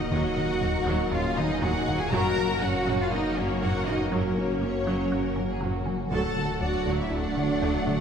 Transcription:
Already playing: D#1 F#3 A#3 D#4 F#4 A#4 D#5 F#5, impact
0.11 D#2 D#3 F#3 D#4 F#4 D#5 F#5
0.37 D#3
0.61 D#2 F#3 A#4
0.85 D#2 D#3 F#3
1.10 D#2 F#3 C#4 D#4 F4 G#4 F5
1.35 D#2 D#3 F#3 A#3 B3 D#4 D#5
1.61 D#2 D#3 F#3 D#4 F#4 F#5
1.86 D#2 D#3 F#3 A#3
1.99 F4 G#4 G#5
2.11 F#1 F#2 F#3 A#3 F#4 A#4 F#5 A#5
2.37 F#3
2.61 F#2 F#3 A#3 C#4 F#4 F#5
2.86 F#2 F#3
3.00 C#4 F4 F5
3.12 F#2 F#3 B3 D#4 F#4 D#5
3.37 F#2 F#3 A#3 C#4 C#5
3.62 F#2 F#3 C#4 F#4 C#5 F#5
3.87 F#2 F#3 B3 C#4 D#4 D#5
4.12 F#2 F#3 A#3 C#4 A#4 C#5
4.38 F#3
4.62 F#2 F#3 A#3 C#5
4.87 F#2 F#3
5.12 F#2 F#3 F#4 A#4
5.36 F#2 F#3 C#4
5.51 G#4
5.61 F#2 F#3 F#4
5.86 F#2 F#3 C#4
6.11 D1 D2 D3 F#3 A3 F#4 A4 F#5 A5
6.36 D3
6.60 D2 F#3 D4 F#4 D5 F#5
6.86 D2 D3 F#3
6.99 C#4 E4 E5
7.10 D2 F#3 A3 D4 D5 F#5
7.36 D2 D3 F#3 A3
7.61 D2 D3 F#3
7.86 D2 D3 F#3 A3

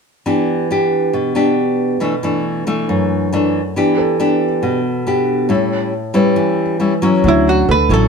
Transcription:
0.26 E3 B3 D4 G4
0.71 B3 D4 G4
1.13 B2
1.35 B3 D4 G4
2.00 B2 E3 A3 D4
2.23 E3 A3 D4
2.67 E3 A3 D4
2.89 F#2
3.33 E3 A3 D4
3.76 E3 B3 D4 G4
3.97 A4
4.19 B3 D4 G4
4.63 B2
5.07 B3 D4 G4
5.49 A2 G3 C#4 E4
6.14 G3 C#4 E4 B4
6.36 E3
6.80 G3 C#4 E4
7.02 F#3 C#4 E4
7.24 D2 D3
7.28 E4
7.49 F#4
7.69 D2 A4 B4
7.89 A1 F#3 C#4 E4
7.94 A4

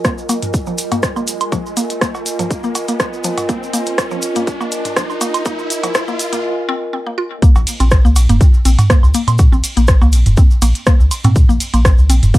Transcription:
Already playing: F4 A#4 D#5 G#5, riser
0.04 A#3, kick, cross-stick, closed hi-hat, cabasa
0.18 cabasa
0.29 A#3, closed hi-hat, cowbell, cabasa
0.42 closed hi-hat, mid tom, cabasa
0.54 kick, closed hi-hat, cabasa
0.66 F3, cabasa
0.78 closed hi-hat, cabasa
0.92 A#3, closed hi-hat, mid tom, cowbell, cabasa
1.03 kick, cross-stick, closed hi-hat, cabasa
1.16 A#3, cabasa, low woodblock
1.27 closed hi-hat, cabasa
1.41 closed hi-hat, cabasa, low woodblock
1.52 F3, kick, closed hi-hat, cowbell, cabasa
1.66 cabasa
1.77 A#3, closed hi-hat, cabasa
1.90 closed hi-hat, cabasa
2.01 A#3, kick, cross-stick, closed hi-hat, cabasa
2.15 cowbell, cabasa
2.26 closed hi-hat, cabasa
2.39 F3, closed hi-hat, mid tom, cabasa
2.51 kick, closed hi-hat, cabasa
2.64 A#3, cabasa
2.75 closed hi-hat, cowbell, cabasa
2.88 A#3, closed hi-hat, cabasa
3.00 kick, cross-stick, closed hi-hat, cabasa
3.13 cabasa
3.24 F3, closed hi-hat, cabasa
3.38 closed hi-hat, mid tom, cowbell, cabasa
3.49 A#3, kick, closed hi-hat, cabasa
3.63 cabasa
3.73 A#3, closed hi-hat, cabasa
3.86 closed hi-hat, cabasa
3.98 kick, cross-stick, closed hi-hat, cowbell, cabasa
4.11 F3, cabasa
4.22 closed hi-hat, cabasa
4.36 A#3, closed hi-hat, mid tom, cabasa
4.47 kick, closed hi-hat, cabasa
4.61 A#3, cowbell, cabasa
4.72 closed hi-hat, cabasa
4.85 closed hi-hat, mid tom, cabasa
4.96 F3, kick, cross-stick, closed hi-hat, cabasa
5.10 cabasa, low woodblock
5.21 A#3, closed hi-hat, cowbell, cabasa
5.34 closed hi-hat, cabasa, low woodblock
5.45 A#3, kick, closed hi-hat, cabasa
5.59 cabasa
5.70 closed hi-hat, cabasa
5.83 F3, closed hi-hat, cowbell, cabasa
5.95 kick, cross-stick, closed hi-hat, cabasa
6.08 A#3, cabasa
6.19 closed hi-hat, cabasa
6.33 A#3, closed hi-hat, mid tom, cabasa
6.69 C4
6.93 C4
7.07 A#3
7.18 F4
7.42 A#3, kick, closed hi-hat, cabasa
7.56 A#1, cowbell, cabasa
7.67 closed hi-hat, ride, cabasa
7.80 A#1 C4, closed hi-hat, cabasa, low woodblock
7.91 kick, cross-stick, closed hi-hat, cabasa
8.05 C#2 A#3, cabasa
8.16 A#1, closed hi-hat, ride, cowbell, cabasa
8.29 F1 A#3, closed hi-hat, mid tom, cabasa
8.41 kick, closed hi-hat, cabasa
8.54 cabasa
8.65 A#1 C4, closed hi-hat, ride, cabasa
8.79 closed hi-hat, mid tom, cowbell, cabasa
8.90 A#3, kick, cross-stick, closed hi-hat, cabasa
9.03 C#2, cabasa, low woodblock
9.14 A#3, closed hi-hat, ride, cabasa
9.28 A#2, closed hi-hat, cabasa, low woodblock
9.38 kick, closed hi-hat, cowbell, cabasa
9.52 A#1 C4, cabasa
9.64 closed hi-hat, ride, cabasa
9.77 A#1 A#3, closed hi-hat, cabasa
9.88 kick, cross-stick, closed hi-hat, cabasa
10.01 C#2 A#3, cowbell, cabasa
10.12 A#1, closed hi-hat, ride, cabasa
10.26 F1, closed hi-hat, mid tom, cabasa
10.37 C4, kick, closed hi-hat, cabasa
10.51 cabasa
10.62 A#1 A#3, closed hi-hat, ride, cowbell, cabasa
10.75 closed hi-hat, cabasa
10.86 A#3, kick, cross-stick, closed hi-hat, cabasa
11.00 C#2, cabasa
11.11 closed hi-hat, ride, cabasa, low woodblock
11.24 A#2 C4, closed hi-hat, mid tom, cowbell, cabasa
11.36 kick, closed hi-hat, cabasa
11.49 A#1 A#3, cabasa
11.60 closed hi-hat, ride, cabasa
11.74 A#1 A#3, closed hi-hat, cabasa, low woodblock
11.85 kick, cross-stick, closed hi-hat, cowbell, cabasa
11.98 C#2, cabasa
12.10 A#1 C4, closed hi-hat, ride, cabasa
12.23 F1, closed hi-hat, mid tom, cabasa
12.34 A#3, kick, closed hi-hat, cabasa

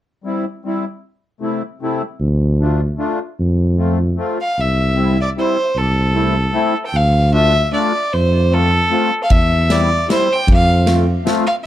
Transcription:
0.24 G3 C4 E4
0.65 G3 C4 E4
1.40 C3 A3 C4 E4
1.81 C3 A3 C4 E4
2.20 D2
2.60 A3 D4 F4
2.98 A3 D4 F4
3.40 F2
3.78 A3 C4 F4
4.17 A3 C4 F4
4.41 F5
4.58 C2 E5
4.95 G3 C4 E4
5.21 D5
5.36 G3 C4 E4 C5
5.75 C2 A4
6.14 A3 C4 E4
6.53 A3 C4 E4
6.86 G5
6.93 D2 F5
7.32 A3 D4 F4 E5
7.72 A3 D4 F4 D5
8.13 F2 C5
8.51 A3 C4 F4 A4
8.90 A3 C4 F4
9.23 F5
9.30 E2 E5, kick, ride
9.69 G3 C4 E4 D5, snare, ride
10.07 G3 C4 E4 C5, snare, ride
10.33 G5
10.48 F2, kick, ride
10.54 F5
10.85 A3 C4 F4, snare, ride
11.25 A3 C4 F4, snare, ride
11.47 F5

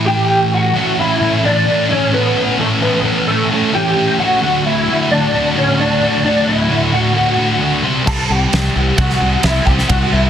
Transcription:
Already playing: A2 E3 A3 E4
0.05 G4 G5
0.52 F#4 F#5
0.74 A2 E3 A3 C#4 E4 A4
0.98 A3 C#4 E4 A4 E5
1.20 A2 E3 A3 C#4 E4 A4
1.44 A3 C#4 D4 E4 A4 D5
1.66 A3 C#4 E4 A4
1.90 A2 E3 A3 C#4 E4 A4 C#5
2.12 A3 B3 C#4 E4 A4 B4
2.36 A3 C#4 E4 A4
2.58 A2 E3 A3 C#4 E4 A4
2.80 B3 C#4 E4 A4 B4
2.84 A3
3.03 A2 E3 A3 C#4 E4 A4
3.27 A3 C#4 E4 A4
3.50 A3 C#4 E4 A4
3.72 A2 E3 A3 C#4 E4 G4 A4 G5
3.95 A3 C#4 E4 A4
4.18 A3 C#4 E4 F#4 A4 F#5
4.41 D2 A2 D3 A3 F#4
4.63 D3 A3 E4 F#4 E5
4.87 D2 A2 D3 A3 F#4
5.09 D3 A3 D4 F#4 D5
5.34 A2 D3 A3 F#4
5.55 D2 A2 D3 A3 C#4 F#4 C#5
5.78 A2 D3 A3 D4 F#4 D5
6.01 D3 A3 F#4
6.23 D2 A2 D3 A3 D4 F#4 D5
6.45 D3 A3 E4 F#4 E5
6.68 D2 A2 D3 A3 F#4
6.91 D3 A3 F#4 F#5
7.14 A2 D3 A3 F#4
7.36 D2 A2 D3 A3 F#4
7.59 A2 D3 A3 F#4
7.83 C3 G3 C4 E4 G4 C5
8.05 C2 C3 G3 C4 E4 G4 A4 A5, kick, crash
8.29 C2 C4 E4 G4 C5 G5
8.52 C2 C3 G3 C4 E4 G4 C5, snare, ride bell
8.74 C2 E4 G4 C5
8.78 C4 F#5
8.97 C2 C4 E4 F#4 G4 C5 F#5, kick, ride bell
9.10 snare
9.20 C2 C3 G3 C4 E4 G4 C5
9.43 C2 C4 E4 G4 C5 E5, snare, ride bell
9.65 C2 C4 E4 G4 C5 G5, kick
9.78 snare
9.88 C2 C3 G3 C4 E4 F#4 G4 F#5, kick, ride bell
9.93 C5
10.10 C2 C4 E4 G4 C5 E5
10.14 E4

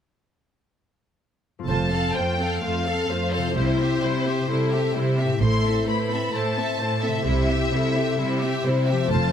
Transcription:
1.59 F2 C4 F4
1.64 F1 F2 A3 F4 A4 A5
1.68 C5
1.92 C4 A4 F5
2.14 F2 A3 F4 C5 G5
2.38 C4 A4 F5
2.60 F2 A3 F4 A4 C5 F5
2.85 C4 A4 F5
3.07 F2 A3 F4 C5
3.31 C4 A4 C5 F5
3.38 C3
3.42 C4
3.47 E4
3.51 E4 G4
3.55 C2 C3 G3 E4 C5
3.79 C4 G4 E5
4.00 C3 G3 E4 G4 C5
4.25 C4 G4 E5
4.48 C3 G3 E4 A4 C5
4.71 C4 G4 E5
4.94 C3 G3 E4 G4 C5
5.17 C4 G4 E5
5.25 A2
5.29 C4
5.34 E4
5.38 A1 A2 A3 E4 A4 C5 C6
5.64 C4 A4 E5
5.86 A2 A3 E4 B4 C5 B5
6.10 C4 A4 E5
6.32 A2 A3 E4 C5 A5
6.57 C4 A4 E5
6.79 A2 A3 E4 A4 C5
7.00 C4 A4 E5
7.08 C3
7.12 C4
7.17 E4
7.22 C2 C3 E4 G4 C5
7.26 G3 E4 G4
7.49 C4 G4 E5
7.72 C3 G3 E4 A4 C5
7.95 C4 G4 E5
8.17 C3 G3 E4 G4 C5
8.40 C4 G4 E5
8.64 C3 G3 E4 C5
8.87 C4 G4 E5
8.92 F3
8.97 C4
9.02 F4
9.06 A4 A5
9.10 F1 F2 A3 F4 C5

